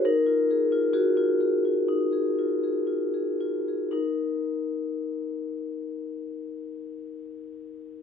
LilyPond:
\new Staff \with { instrumentName = "Vibraphone" } { \time 4/4 \key ges \major \tempo 4 = 58 << { bes'4 ges'2. | <ees' bes'>1 | } \\ { ees'16 f'16 aes'16 f'16 aes'16 f'16 aes'16 f'16 ees'16 aes'16 f'16 aes'16 f'16 aes'16 f'16 aes'16 | r1 | } >> }